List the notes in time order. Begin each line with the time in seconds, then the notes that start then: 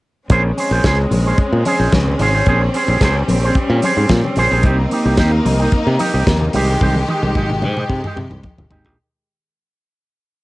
0.29 A#1 G#3 C4 C#4 G#4 C5, kick, closed hi-hat, muted conga
0.45 muted clean electric guitar stroke
0.58 C#4 G#4 C5, open hi-hat, muted conga
0.71 A#1 C#4 G#4 C5
0.84 C#2 C#4 G#4 C5, kick, snare, closed hi-hat, muted conga
1.00 muted clean electric guitar stroke
1.11 A#1, muted clean electric guitar stroke, open hi-hat, muted conga, high conga, low conga
1.26 C#4 G#4 C5
1.38 muted fingered electric bass stroke, kick, closed hi-hat
1.53 A#2, muted clean electric guitar stroke
1.65 C#4 G#4 C5, open hi-hat, high conga
1.80 A#1 C#4 G#4 C5
1.92 C#2, kick, snare, closed hi-hat, muted conga, high conga
2.08 muted clean electric guitar stroke, low conga
2.19 G#1 C#4 G#4 C5, open hi-hat, muted conga, low conga
2.35 C#4 G#4 C5
2.46 A#1 G3 C#4 G#4 C5, kick, closed hi-hat
2.63 muted clean electric guitar stroke
2.74 C#4 G#4 C5, open hi-hat, muted conga
2.88 A#1 C#4 G#4 C5
3.01 C#2 C#4 G#4 C5, kick, snare, closed hi-hat, muted conga
3.17 muted clean electric guitar stroke
3.28 A#1, muted clean electric guitar stroke, open hi-hat, muted conga, high conga, low conga
3.44 C#4 G#4 C5
3.55 muted fingered electric bass stroke, muted clean electric guitar stroke, kick, closed hi-hat, muted conga
3.70 A#2, muted clean electric guitar stroke
3.82 C#4 G#4 C5, open hi-hat, muted conga, high conga
3.97 G#2 C#4 G#4 C5
4.09 A#2, kick, snare, closed hi-hat, muted conga, high conga
4.24 muted clean electric guitar stroke, low conga
4.36 A#1 C#4 G#4 C5, open hi-hat, low conga
4.51 A#1 C#4 G#4 C5
4.63 C2 A#3 D#4 G4, kick, closed hi-hat, muted conga
4.79 muted clean electric guitar stroke
4.91 A#3 D#4 G4, open hi-hat, muted conga
5.05 C2 A#3 D#4 G4
5.17 D#2 A#3 D#4 G4, kick, snare, closed hi-hat
5.32 muted clean electric guitar stroke
5.45 C2, muted clean electric guitar stroke, open hi-hat, high conga, low conga
5.59 A#3 D#4 G4
5.72 muted clean electric guitar stroke, muted fingered electric bass stroke, kick, closed hi-hat, muted conga
5.87 C3, muted clean electric guitar stroke
5.99 A#3 D#4 G4, open hi-hat, high conga
6.14 C2 A#3 D#4 G4
6.27 D#2, kick, snare, closed hi-hat, muted conga, high conga
6.41 muted clean electric guitar stroke, low conga
6.53 C2 D#3 G#3 D#4 G4, open hi-hat, muted conga, low conga
6.70 G#3 D#4 G4
6.81 C2 G#3 D#4 G4, kick, high tom, muted conga
6.95 muted clean electric guitar stroke, high tom
7.09 G#3 D#4 G4, high tom
7.23 C2 G#3 D#4 G4, high tom
7.35 G#1 G#3 D#4 G4, kick, mid tom, muted conga, high conga
7.50 muted clean electric guitar stroke, mid tom
7.62 G#2, muted clean electric guitar stroke, mid tom, muted conga, high conga, low conga
7.77 G#3 D#4 G4, mid tom
7.90 C3, kick, mid tom
8.04 G#3 D#4 G4, mid tom
8.17 C3, muted clean electric guitar stroke, mid tom, muted conga, high conga
8.31 C2, muted clean electric guitar stroke, mid tom
8.43 muted clean electric guitar stroke, kick, floor tom, muted conga, high conga
8.58 G1, muted clean electric guitar stroke, floor tom, low conga
8.70 G#1 G#3 D#4 G4, floor tom, low conga
8.85 A#1 G#3 D#4 G4, floor tom